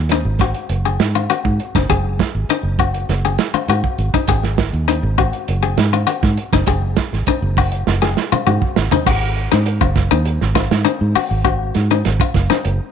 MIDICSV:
0, 0, Header, 1, 5, 480
1, 0, Start_track
1, 0, Tempo, 597015
1, 1528, Time_signature, 4, 2, 24, 8
1, 10386, End_track
2, 0, Start_track
2, 0, Title_t, "Guzheng"
2, 0, Program_c, 0, 107
2, 94, Note_on_c, 0, 63, 76
2, 304, Note_off_c, 0, 63, 0
2, 329, Note_on_c, 0, 66, 74
2, 542, Note_off_c, 0, 66, 0
2, 686, Note_on_c, 0, 68, 64
2, 902, Note_off_c, 0, 68, 0
2, 926, Note_on_c, 0, 65, 69
2, 1033, Note_off_c, 0, 65, 0
2, 1043, Note_on_c, 0, 66, 76
2, 1260, Note_off_c, 0, 66, 0
2, 1410, Note_on_c, 0, 63, 73
2, 1516, Note_off_c, 0, 63, 0
2, 1525, Note_on_c, 0, 68, 87
2, 1741, Note_off_c, 0, 68, 0
2, 2010, Note_on_c, 0, 63, 80
2, 2224, Note_off_c, 0, 63, 0
2, 2247, Note_on_c, 0, 66, 71
2, 2463, Note_off_c, 0, 66, 0
2, 2611, Note_on_c, 0, 68, 65
2, 2827, Note_off_c, 0, 68, 0
2, 2846, Note_on_c, 0, 65, 70
2, 2954, Note_off_c, 0, 65, 0
2, 2971, Note_on_c, 0, 66, 80
2, 3186, Note_off_c, 0, 66, 0
2, 3328, Note_on_c, 0, 63, 71
2, 3436, Note_off_c, 0, 63, 0
2, 3446, Note_on_c, 0, 68, 87
2, 3663, Note_off_c, 0, 68, 0
2, 3922, Note_on_c, 0, 63, 77
2, 4141, Note_off_c, 0, 63, 0
2, 4165, Note_on_c, 0, 66, 73
2, 4383, Note_off_c, 0, 66, 0
2, 4523, Note_on_c, 0, 68, 65
2, 4743, Note_off_c, 0, 68, 0
2, 4768, Note_on_c, 0, 65, 72
2, 4876, Note_off_c, 0, 65, 0
2, 4878, Note_on_c, 0, 66, 74
2, 5099, Note_off_c, 0, 66, 0
2, 5251, Note_on_c, 0, 63, 73
2, 5358, Note_off_c, 0, 63, 0
2, 5367, Note_on_c, 0, 68, 87
2, 5584, Note_off_c, 0, 68, 0
2, 5852, Note_on_c, 0, 63, 78
2, 6066, Note_off_c, 0, 63, 0
2, 6092, Note_on_c, 0, 66, 75
2, 6306, Note_off_c, 0, 66, 0
2, 6447, Note_on_c, 0, 68, 68
2, 6664, Note_off_c, 0, 68, 0
2, 6691, Note_on_c, 0, 65, 73
2, 6797, Note_off_c, 0, 65, 0
2, 6806, Note_on_c, 0, 66, 78
2, 7022, Note_off_c, 0, 66, 0
2, 7172, Note_on_c, 0, 63, 77
2, 7277, Note_off_c, 0, 63, 0
2, 7289, Note_on_c, 0, 66, 96
2, 7504, Note_off_c, 0, 66, 0
2, 7650, Note_on_c, 0, 63, 67
2, 7865, Note_off_c, 0, 63, 0
2, 7887, Note_on_c, 0, 65, 73
2, 8103, Note_off_c, 0, 65, 0
2, 8128, Note_on_c, 0, 63, 75
2, 8343, Note_off_c, 0, 63, 0
2, 8484, Note_on_c, 0, 65, 75
2, 8699, Note_off_c, 0, 65, 0
2, 8720, Note_on_c, 0, 63, 87
2, 8937, Note_off_c, 0, 63, 0
2, 8968, Note_on_c, 0, 66, 81
2, 9181, Note_off_c, 0, 66, 0
2, 9202, Note_on_c, 0, 66, 90
2, 9418, Note_off_c, 0, 66, 0
2, 9575, Note_on_c, 0, 63, 65
2, 9785, Note_off_c, 0, 63, 0
2, 9815, Note_on_c, 0, 65, 75
2, 10025, Note_off_c, 0, 65, 0
2, 10049, Note_on_c, 0, 63, 74
2, 10261, Note_off_c, 0, 63, 0
2, 10386, End_track
3, 0, Start_track
3, 0, Title_t, "Fingered electric bass"
3, 0, Program_c, 1, 33
3, 0, Note_on_c, 1, 39, 85
3, 178, Note_off_c, 1, 39, 0
3, 200, Note_on_c, 1, 32, 89
3, 418, Note_off_c, 1, 32, 0
3, 558, Note_on_c, 1, 30, 90
3, 777, Note_off_c, 1, 30, 0
3, 802, Note_on_c, 1, 44, 82
3, 1019, Note_off_c, 1, 44, 0
3, 1167, Note_on_c, 1, 44, 80
3, 1274, Note_off_c, 1, 44, 0
3, 1404, Note_on_c, 1, 30, 79
3, 1513, Note_off_c, 1, 30, 0
3, 1526, Note_on_c, 1, 30, 94
3, 1742, Note_off_c, 1, 30, 0
3, 1886, Note_on_c, 1, 32, 75
3, 1994, Note_off_c, 1, 32, 0
3, 2115, Note_on_c, 1, 30, 79
3, 2444, Note_off_c, 1, 30, 0
3, 2484, Note_on_c, 1, 30, 98
3, 2702, Note_off_c, 1, 30, 0
3, 2962, Note_on_c, 1, 44, 83
3, 3076, Note_off_c, 1, 44, 0
3, 3202, Note_on_c, 1, 32, 89
3, 3316, Note_off_c, 1, 32, 0
3, 3442, Note_on_c, 1, 32, 103
3, 3771, Note_off_c, 1, 32, 0
3, 3804, Note_on_c, 1, 39, 87
3, 4024, Note_off_c, 1, 39, 0
3, 4044, Note_on_c, 1, 32, 96
3, 4264, Note_off_c, 1, 32, 0
3, 4410, Note_on_c, 1, 30, 91
3, 4626, Note_off_c, 1, 30, 0
3, 4642, Note_on_c, 1, 44, 88
3, 4862, Note_off_c, 1, 44, 0
3, 5008, Note_on_c, 1, 44, 75
3, 5116, Note_off_c, 1, 44, 0
3, 5249, Note_on_c, 1, 30, 86
3, 5357, Note_off_c, 1, 30, 0
3, 5364, Note_on_c, 1, 30, 96
3, 5583, Note_off_c, 1, 30, 0
3, 5731, Note_on_c, 1, 32, 79
3, 5838, Note_off_c, 1, 32, 0
3, 5967, Note_on_c, 1, 30, 86
3, 6290, Note_off_c, 1, 30, 0
3, 6331, Note_on_c, 1, 30, 106
3, 6546, Note_off_c, 1, 30, 0
3, 6809, Note_on_c, 1, 44, 82
3, 6919, Note_off_c, 1, 44, 0
3, 7050, Note_on_c, 1, 32, 92
3, 7159, Note_off_c, 1, 32, 0
3, 7289, Note_on_c, 1, 32, 98
3, 7613, Note_off_c, 1, 32, 0
3, 7661, Note_on_c, 1, 44, 78
3, 7871, Note_off_c, 1, 44, 0
3, 7888, Note_on_c, 1, 30, 94
3, 8104, Note_off_c, 1, 30, 0
3, 8133, Note_on_c, 1, 39, 99
3, 8346, Note_off_c, 1, 39, 0
3, 8372, Note_on_c, 1, 32, 88
3, 8586, Note_off_c, 1, 32, 0
3, 8611, Note_on_c, 1, 44, 85
3, 8715, Note_off_c, 1, 44, 0
3, 8852, Note_on_c, 1, 44, 81
3, 8956, Note_off_c, 1, 44, 0
3, 9091, Note_on_c, 1, 32, 83
3, 9410, Note_off_c, 1, 32, 0
3, 9453, Note_on_c, 1, 44, 90
3, 9664, Note_off_c, 1, 44, 0
3, 9696, Note_on_c, 1, 32, 92
3, 9800, Note_off_c, 1, 32, 0
3, 9927, Note_on_c, 1, 30, 102
3, 10035, Note_off_c, 1, 30, 0
3, 10172, Note_on_c, 1, 30, 91
3, 10278, Note_off_c, 1, 30, 0
3, 10386, End_track
4, 0, Start_track
4, 0, Title_t, "Muted fingered electric bass strokes"
4, 2000, Note_on_c, 9, 29, 33
4, 2080, Note_off_c, 9, 29, 0
4, 2842, Note_on_c, 9, 29, 37
4, 2923, Note_off_c, 9, 29, 0
4, 5846, Note_on_c, 9, 29, 36
4, 5926, Note_off_c, 9, 29, 0
4, 6694, Note_on_c, 9, 29, 35
4, 6774, Note_off_c, 9, 29, 0
4, 8972, Note_on_c, 9, 29, 37
4, 9052, Note_off_c, 9, 29, 0
4, 10386, End_track
5, 0, Start_track
5, 0, Title_t, "Drums"
5, 73, Note_on_c, 9, 42, 64
5, 77, Note_on_c, 9, 38, 27
5, 154, Note_off_c, 9, 42, 0
5, 157, Note_off_c, 9, 38, 0
5, 311, Note_on_c, 9, 42, 47
5, 314, Note_on_c, 9, 38, 26
5, 318, Note_on_c, 9, 36, 70
5, 392, Note_off_c, 9, 42, 0
5, 395, Note_off_c, 9, 38, 0
5, 399, Note_off_c, 9, 36, 0
5, 437, Note_on_c, 9, 42, 50
5, 517, Note_off_c, 9, 42, 0
5, 557, Note_on_c, 9, 42, 66
5, 638, Note_off_c, 9, 42, 0
5, 800, Note_on_c, 9, 42, 48
5, 803, Note_on_c, 9, 38, 64
5, 880, Note_off_c, 9, 42, 0
5, 883, Note_off_c, 9, 38, 0
5, 1043, Note_on_c, 9, 42, 64
5, 1123, Note_off_c, 9, 42, 0
5, 1165, Note_on_c, 9, 36, 67
5, 1246, Note_off_c, 9, 36, 0
5, 1283, Note_on_c, 9, 42, 54
5, 1363, Note_off_c, 9, 42, 0
5, 1407, Note_on_c, 9, 36, 65
5, 1415, Note_on_c, 9, 38, 27
5, 1487, Note_off_c, 9, 36, 0
5, 1495, Note_off_c, 9, 38, 0
5, 1524, Note_on_c, 9, 36, 87
5, 1525, Note_on_c, 9, 42, 65
5, 1605, Note_off_c, 9, 36, 0
5, 1605, Note_off_c, 9, 42, 0
5, 1764, Note_on_c, 9, 36, 62
5, 1766, Note_on_c, 9, 42, 51
5, 1769, Note_on_c, 9, 38, 69
5, 1845, Note_off_c, 9, 36, 0
5, 1846, Note_off_c, 9, 42, 0
5, 1850, Note_off_c, 9, 38, 0
5, 2003, Note_on_c, 9, 42, 70
5, 2083, Note_off_c, 9, 42, 0
5, 2240, Note_on_c, 9, 42, 54
5, 2242, Note_on_c, 9, 36, 69
5, 2320, Note_off_c, 9, 42, 0
5, 2322, Note_off_c, 9, 36, 0
5, 2365, Note_on_c, 9, 42, 55
5, 2446, Note_off_c, 9, 42, 0
5, 2485, Note_on_c, 9, 42, 70
5, 2488, Note_on_c, 9, 38, 28
5, 2566, Note_off_c, 9, 42, 0
5, 2569, Note_off_c, 9, 38, 0
5, 2720, Note_on_c, 9, 42, 52
5, 2723, Note_on_c, 9, 38, 63
5, 2801, Note_off_c, 9, 42, 0
5, 2804, Note_off_c, 9, 38, 0
5, 2960, Note_on_c, 9, 42, 61
5, 3041, Note_off_c, 9, 42, 0
5, 3086, Note_on_c, 9, 36, 64
5, 3166, Note_off_c, 9, 36, 0
5, 3203, Note_on_c, 9, 42, 47
5, 3283, Note_off_c, 9, 42, 0
5, 3325, Note_on_c, 9, 42, 45
5, 3327, Note_on_c, 9, 36, 66
5, 3406, Note_off_c, 9, 42, 0
5, 3407, Note_off_c, 9, 36, 0
5, 3436, Note_on_c, 9, 42, 62
5, 3443, Note_on_c, 9, 36, 88
5, 3517, Note_off_c, 9, 42, 0
5, 3524, Note_off_c, 9, 36, 0
5, 3566, Note_on_c, 9, 38, 28
5, 3646, Note_off_c, 9, 38, 0
5, 3680, Note_on_c, 9, 42, 46
5, 3683, Note_on_c, 9, 38, 73
5, 3684, Note_on_c, 9, 36, 67
5, 3760, Note_off_c, 9, 42, 0
5, 3763, Note_off_c, 9, 38, 0
5, 3764, Note_off_c, 9, 36, 0
5, 3805, Note_on_c, 9, 42, 44
5, 3886, Note_off_c, 9, 42, 0
5, 3929, Note_on_c, 9, 42, 68
5, 4009, Note_off_c, 9, 42, 0
5, 4167, Note_on_c, 9, 36, 70
5, 4168, Note_on_c, 9, 42, 50
5, 4248, Note_off_c, 9, 36, 0
5, 4248, Note_off_c, 9, 42, 0
5, 4286, Note_on_c, 9, 42, 47
5, 4367, Note_off_c, 9, 42, 0
5, 4406, Note_on_c, 9, 42, 65
5, 4487, Note_off_c, 9, 42, 0
5, 4642, Note_on_c, 9, 42, 50
5, 4645, Note_on_c, 9, 38, 65
5, 4722, Note_off_c, 9, 42, 0
5, 4726, Note_off_c, 9, 38, 0
5, 4881, Note_on_c, 9, 42, 62
5, 4962, Note_off_c, 9, 42, 0
5, 5008, Note_on_c, 9, 36, 70
5, 5010, Note_on_c, 9, 38, 28
5, 5088, Note_off_c, 9, 36, 0
5, 5090, Note_off_c, 9, 38, 0
5, 5123, Note_on_c, 9, 42, 53
5, 5204, Note_off_c, 9, 42, 0
5, 5247, Note_on_c, 9, 36, 68
5, 5248, Note_on_c, 9, 38, 28
5, 5328, Note_off_c, 9, 36, 0
5, 5329, Note_off_c, 9, 38, 0
5, 5358, Note_on_c, 9, 42, 64
5, 5364, Note_on_c, 9, 36, 84
5, 5438, Note_off_c, 9, 42, 0
5, 5444, Note_off_c, 9, 36, 0
5, 5597, Note_on_c, 9, 42, 53
5, 5600, Note_on_c, 9, 38, 66
5, 5604, Note_on_c, 9, 36, 62
5, 5678, Note_off_c, 9, 42, 0
5, 5681, Note_off_c, 9, 38, 0
5, 5684, Note_off_c, 9, 36, 0
5, 5732, Note_on_c, 9, 38, 25
5, 5813, Note_off_c, 9, 38, 0
5, 5841, Note_on_c, 9, 42, 71
5, 5846, Note_on_c, 9, 36, 70
5, 5921, Note_off_c, 9, 42, 0
5, 5926, Note_off_c, 9, 36, 0
5, 6085, Note_on_c, 9, 46, 65
5, 6086, Note_on_c, 9, 36, 72
5, 6166, Note_off_c, 9, 36, 0
5, 6166, Note_off_c, 9, 46, 0
5, 6205, Note_on_c, 9, 42, 58
5, 6285, Note_off_c, 9, 42, 0
5, 6327, Note_on_c, 9, 38, 46
5, 6407, Note_off_c, 9, 38, 0
5, 6452, Note_on_c, 9, 38, 46
5, 6532, Note_off_c, 9, 38, 0
5, 6568, Note_on_c, 9, 38, 51
5, 6649, Note_off_c, 9, 38, 0
5, 6692, Note_on_c, 9, 47, 51
5, 6772, Note_off_c, 9, 47, 0
5, 6809, Note_on_c, 9, 45, 61
5, 6890, Note_off_c, 9, 45, 0
5, 6928, Note_on_c, 9, 36, 64
5, 7009, Note_off_c, 9, 36, 0
5, 7046, Note_on_c, 9, 38, 73
5, 7126, Note_off_c, 9, 38, 0
5, 7166, Note_on_c, 9, 43, 68
5, 7247, Note_off_c, 9, 43, 0
5, 7286, Note_on_c, 9, 49, 80
5, 7287, Note_on_c, 9, 36, 93
5, 7367, Note_off_c, 9, 49, 0
5, 7368, Note_off_c, 9, 36, 0
5, 7525, Note_on_c, 9, 42, 53
5, 7606, Note_off_c, 9, 42, 0
5, 7652, Note_on_c, 9, 38, 28
5, 7733, Note_off_c, 9, 38, 0
5, 7764, Note_on_c, 9, 42, 72
5, 7844, Note_off_c, 9, 42, 0
5, 7889, Note_on_c, 9, 36, 80
5, 7969, Note_off_c, 9, 36, 0
5, 8004, Note_on_c, 9, 42, 50
5, 8006, Note_on_c, 9, 36, 65
5, 8008, Note_on_c, 9, 38, 30
5, 8085, Note_off_c, 9, 42, 0
5, 8086, Note_off_c, 9, 36, 0
5, 8088, Note_off_c, 9, 38, 0
5, 8130, Note_on_c, 9, 42, 52
5, 8211, Note_off_c, 9, 42, 0
5, 8243, Note_on_c, 9, 42, 70
5, 8323, Note_off_c, 9, 42, 0
5, 8372, Note_on_c, 9, 38, 29
5, 8453, Note_off_c, 9, 38, 0
5, 8485, Note_on_c, 9, 42, 53
5, 8486, Note_on_c, 9, 36, 70
5, 8488, Note_on_c, 9, 38, 70
5, 8565, Note_off_c, 9, 42, 0
5, 8566, Note_off_c, 9, 36, 0
5, 8569, Note_off_c, 9, 38, 0
5, 8613, Note_on_c, 9, 38, 74
5, 8694, Note_off_c, 9, 38, 0
5, 8725, Note_on_c, 9, 42, 67
5, 8806, Note_off_c, 9, 42, 0
5, 8964, Note_on_c, 9, 46, 60
5, 9045, Note_off_c, 9, 46, 0
5, 9205, Note_on_c, 9, 36, 84
5, 9205, Note_on_c, 9, 42, 74
5, 9285, Note_off_c, 9, 36, 0
5, 9285, Note_off_c, 9, 42, 0
5, 9443, Note_on_c, 9, 42, 57
5, 9446, Note_on_c, 9, 38, 28
5, 9523, Note_off_c, 9, 42, 0
5, 9526, Note_off_c, 9, 38, 0
5, 9571, Note_on_c, 9, 42, 60
5, 9651, Note_off_c, 9, 42, 0
5, 9688, Note_on_c, 9, 42, 80
5, 9691, Note_on_c, 9, 38, 32
5, 9768, Note_off_c, 9, 42, 0
5, 9771, Note_off_c, 9, 38, 0
5, 9807, Note_on_c, 9, 36, 77
5, 9888, Note_off_c, 9, 36, 0
5, 9924, Note_on_c, 9, 36, 66
5, 9928, Note_on_c, 9, 42, 57
5, 9931, Note_on_c, 9, 38, 30
5, 10005, Note_off_c, 9, 36, 0
5, 10008, Note_off_c, 9, 42, 0
5, 10011, Note_off_c, 9, 38, 0
5, 10053, Note_on_c, 9, 42, 53
5, 10056, Note_on_c, 9, 38, 32
5, 10133, Note_off_c, 9, 42, 0
5, 10136, Note_off_c, 9, 38, 0
5, 10167, Note_on_c, 9, 42, 73
5, 10248, Note_off_c, 9, 42, 0
5, 10386, End_track
0, 0, End_of_file